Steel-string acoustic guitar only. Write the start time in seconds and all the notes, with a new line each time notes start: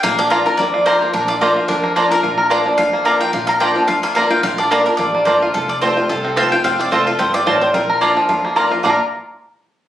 0.05 A#2
0.31 F3 A#3 D4 F4
0.46 D4 F4
0.59 F2
0.86 F3 A#3 D4 F4
1.01 D4 F4
1.14 A#2
1.41 F3 A#3 D4 F4
1.68 F2
1.96 F3 A#3 D4 F4
2.11 D4 F4
2.24 A#2
2.51 F3 A#3 D4 F4
2.66 D4 F4
2.79 F2
3.05 F3 A#3 D4 F4
3.33 A#2
3.60 F3 A#3 D4 F4
3.75 D4 F4
3.88 F2
4.16 F3 A#3 D4 F4
4.30 D4 F4
4.43 A#2
4.70 F3 A#3 D4 F4
4.86 D4 F4
4.98 F2
5.26 F3 A#3 D4 F4
5.54 F2
5.82 F3 A3 C4 F4
5.97 C4 F4
6.10 C3
6.36 F3 A3 C4 F4
6.52 C4 F4
6.64 F2
6.91 F3 A3 C4 F4
7.19 G2
7.47 A2
7.74 A#2
8.01 F3 A#3 D4 F4
8.29 F2
8.56 F3 A#3 D4 F4
8.70 D4 F4
8.83 A#2 F3 A#3 D4 F4